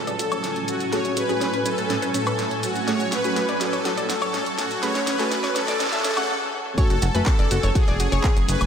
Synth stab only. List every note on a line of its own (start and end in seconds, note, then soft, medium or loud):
0.00 0.89 A3 medium
0.00 0.89 C#4 medium
0.00 0.90 F#4 medium
0.00 0.89 G#5 loud
0.92 1.26 A3 medium
0.92 1.26 C#4 medium
0.92 1.26 F#4 medium
0.92 1.26 G#4 medium
1.29 2.85 A3 medium
1.29 2.85 C#4 medium
1.29 2.85 F#4 medium
1.29 2.85 G#5 loud
2.88 3.21 A3 medium
2.88 3.21 C#4 medium
2.88 3.21 F#4 medium
2.88 3.21 G#4 medium
3.24 4.80 A3 medium
3.24 4.80 C#4 medium
3.24 4.80 F#4 medium
3.24 4.80 G#5 loud
4.83 5.16 A3 medium
4.83 5.16 C#4 medium
4.83 5.16 F#4 medium
4.83 5.16 G#4 loud
5.19 6.14 A3 loud
5.19 6.14 C#4 medium
5.19 6.14 F#4 medium
5.19 6.14 G#5 loud
6.17 6.29 A3 medium
6.17 6.29 C#4 medium
6.17 6.29 F#4 medium
6.17 6.29 G#4 medium
6.78 7.12 A3 medium
6.78 7.12 C#4 medium
6.78 7.12 F#4 medium
6.78 7.12 G#5 medium
7.15 8.66 A3 loud
7.15 8.66 C#4 medium
7.15 8.66 F#4 medium
7.15 8.66 G#5 loud